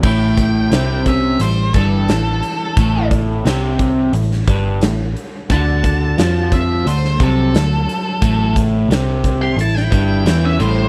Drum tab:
CC |x---------------|----------------|----------------|----------------|
HH |--x-x-x-x-x-x-x-|x-x-x-x-x-x-x-x-|x-x-x-x-x-x-x-x-|x-x-x-x-x-x-x-x-|
SD |----o-------o---|----o----o--o---|----o----o--o---|----o----o--o---|
BD |o-o---o---o-----|o-o---o---o-----|o-o---o---o-----|o-o---o---o-----|